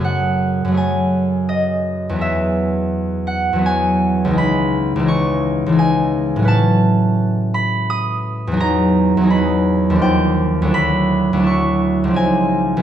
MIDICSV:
0, 0, Header, 1, 2, 480
1, 0, Start_track
1, 0, Tempo, 719424
1, 31, Time_signature, 3, 2, 24, 8
1, 3870, Tempo, 700935
1, 6270, Tempo, 714286
1, 8633, End_track
2, 0, Start_track
2, 0, Title_t, "Harp"
2, 0, Program_c, 0, 46
2, 0, Note_on_c, 0, 42, 42
2, 0, Note_on_c, 0, 54, 37
2, 0, Note_on_c, 0, 57, 38
2, 0, Note_on_c, 0, 61, 40
2, 0, Note_on_c, 0, 73, 45
2, 0, Note_on_c, 0, 85, 61
2, 6, Note_on_c, 0, 68, 38
2, 29, Note_on_c, 0, 78, 65
2, 423, Note_off_c, 0, 42, 0
2, 431, Note_on_c, 0, 42, 46
2, 444, Note_off_c, 0, 54, 0
2, 452, Note_on_c, 0, 54, 35
2, 469, Note_off_c, 0, 57, 0
2, 477, Note_on_c, 0, 57, 38
2, 486, Note_off_c, 0, 68, 0
2, 494, Note_on_c, 0, 68, 36
2, 516, Note_on_c, 0, 80, 63
2, 993, Note_on_c, 0, 75, 64
2, 1099, Note_off_c, 0, 61, 0
2, 1397, Note_on_c, 0, 40, 46
2, 1408, Note_off_c, 0, 54, 0
2, 1416, Note_on_c, 0, 54, 37
2, 1440, Note_on_c, 0, 59, 38
2, 1449, Note_off_c, 0, 68, 0
2, 1456, Note_off_c, 0, 42, 0
2, 1457, Note_on_c, 0, 68, 38
2, 1477, Note_on_c, 0, 76, 65
2, 1479, Note_off_c, 0, 57, 0
2, 1499, Note_off_c, 0, 85, 0
2, 1503, Note_off_c, 0, 73, 0
2, 1815, Note_off_c, 0, 75, 0
2, 2174, Note_off_c, 0, 78, 0
2, 2182, Note_on_c, 0, 78, 62
2, 2346, Note_off_c, 0, 40, 0
2, 2354, Note_on_c, 0, 40, 42
2, 2363, Note_off_c, 0, 54, 0
2, 2371, Note_on_c, 0, 54, 37
2, 2384, Note_off_c, 0, 59, 0
2, 2392, Note_on_c, 0, 59, 35
2, 2404, Note_off_c, 0, 68, 0
2, 2412, Note_on_c, 0, 68, 36
2, 2432, Note_off_c, 0, 80, 0
2, 2440, Note_on_c, 0, 80, 74
2, 2833, Note_on_c, 0, 37, 53
2, 2852, Note_on_c, 0, 52, 43
2, 2875, Note_on_c, 0, 63, 42
2, 2883, Note_off_c, 0, 68, 0
2, 2890, Note_off_c, 0, 40, 0
2, 2891, Note_on_c, 0, 68, 41
2, 2898, Note_off_c, 0, 54, 0
2, 2921, Note_on_c, 0, 83, 81
2, 2922, Note_off_c, 0, 78, 0
2, 3299, Note_off_c, 0, 37, 0
2, 3307, Note_on_c, 0, 37, 48
2, 3323, Note_off_c, 0, 52, 0
2, 3331, Note_on_c, 0, 52, 47
2, 3342, Note_off_c, 0, 63, 0
2, 3350, Note_on_c, 0, 63, 41
2, 3367, Note_off_c, 0, 68, 0
2, 3375, Note_on_c, 0, 68, 38
2, 3391, Note_on_c, 0, 85, 77
2, 3771, Note_off_c, 0, 37, 0
2, 3779, Note_on_c, 0, 37, 48
2, 3787, Note_off_c, 0, 52, 0
2, 3795, Note_on_c, 0, 52, 43
2, 3810, Note_off_c, 0, 63, 0
2, 3818, Note_on_c, 0, 63, 40
2, 3829, Note_off_c, 0, 68, 0
2, 3837, Note_on_c, 0, 68, 42
2, 3853, Note_off_c, 0, 80, 0
2, 3861, Note_on_c, 0, 80, 71
2, 4085, Note_off_c, 0, 76, 0
2, 4253, Note_on_c, 0, 45, 53
2, 4272, Note_on_c, 0, 54, 45
2, 4296, Note_on_c, 0, 61, 46
2, 4313, Note_on_c, 0, 71, 44
2, 4323, Note_off_c, 0, 37, 0
2, 4332, Note_off_c, 0, 52, 0
2, 4334, Note_on_c, 0, 81, 87
2, 4343, Note_off_c, 0, 63, 0
2, 4353, Note_off_c, 0, 68, 0
2, 4365, Note_off_c, 0, 80, 0
2, 5023, Note_off_c, 0, 59, 0
2, 5055, Note_off_c, 0, 83, 0
2, 5063, Note_on_c, 0, 83, 88
2, 5307, Note_on_c, 0, 87, 83
2, 5701, Note_on_c, 0, 40, 54
2, 5722, Note_off_c, 0, 54, 0
2, 5730, Note_on_c, 0, 54, 50
2, 5742, Note_on_c, 0, 63, 53
2, 5755, Note_off_c, 0, 45, 0
2, 5765, Note_on_c, 0, 68, 45
2, 5776, Note_off_c, 0, 61, 0
2, 5790, Note_on_c, 0, 82, 100
2, 5795, Note_off_c, 0, 81, 0
2, 5803, Note_off_c, 0, 85, 0
2, 6170, Note_off_c, 0, 40, 0
2, 6178, Note_on_c, 0, 40, 55
2, 6198, Note_off_c, 0, 54, 0
2, 6206, Note_on_c, 0, 54, 47
2, 6213, Note_off_c, 0, 63, 0
2, 6221, Note_on_c, 0, 63, 45
2, 6238, Note_off_c, 0, 68, 0
2, 6246, Note_on_c, 0, 68, 47
2, 6262, Note_off_c, 0, 83, 0
2, 6270, Note_on_c, 0, 83, 69
2, 6606, Note_off_c, 0, 82, 0
2, 6669, Note_on_c, 0, 39, 51
2, 6684, Note_on_c, 0, 53, 42
2, 6707, Note_on_c, 0, 62, 48
2, 6722, Note_off_c, 0, 40, 0
2, 6731, Note_on_c, 0, 65, 44
2, 6736, Note_off_c, 0, 54, 0
2, 6748, Note_off_c, 0, 71, 0
2, 6749, Note_on_c, 0, 79, 76
2, 6755, Note_off_c, 0, 68, 0
2, 6767, Note_off_c, 0, 83, 0
2, 7153, Note_on_c, 0, 38, 57
2, 7168, Note_on_c, 0, 54, 46
2, 7181, Note_off_c, 0, 62, 0
2, 7189, Note_on_c, 0, 62, 46
2, 7208, Note_off_c, 0, 39, 0
2, 7210, Note_on_c, 0, 64, 46
2, 7215, Note_off_c, 0, 53, 0
2, 7224, Note_off_c, 0, 63, 0
2, 7234, Note_on_c, 0, 83, 92
2, 7239, Note_off_c, 0, 65, 0
2, 7247, Note_off_c, 0, 87, 0
2, 7248, Note_off_c, 0, 79, 0
2, 7622, Note_off_c, 0, 38, 0
2, 7631, Note_on_c, 0, 38, 52
2, 7651, Note_off_c, 0, 54, 0
2, 7659, Note_on_c, 0, 54, 46
2, 7667, Note_off_c, 0, 62, 0
2, 7676, Note_on_c, 0, 62, 40
2, 7691, Note_off_c, 0, 64, 0
2, 7699, Note_on_c, 0, 64, 48
2, 7724, Note_on_c, 0, 85, 65
2, 8050, Note_off_c, 0, 83, 0
2, 8107, Note_on_c, 0, 37, 47
2, 8131, Note_on_c, 0, 53, 38
2, 8151, Note_on_c, 0, 60, 42
2, 8168, Note_off_c, 0, 38, 0
2, 8175, Note_on_c, 0, 63, 41
2, 8183, Note_off_c, 0, 54, 0
2, 8190, Note_on_c, 0, 80, 78
2, 8191, Note_off_c, 0, 62, 0
2, 8202, Note_off_c, 0, 64, 0
2, 8597, Note_on_c, 0, 35, 56
2, 8633, Note_off_c, 0, 35, 0
2, 8633, Note_off_c, 0, 37, 0
2, 8633, Note_off_c, 0, 53, 0
2, 8633, Note_off_c, 0, 60, 0
2, 8633, Note_off_c, 0, 63, 0
2, 8633, Note_off_c, 0, 80, 0
2, 8633, Note_off_c, 0, 85, 0
2, 8633, End_track
0, 0, End_of_file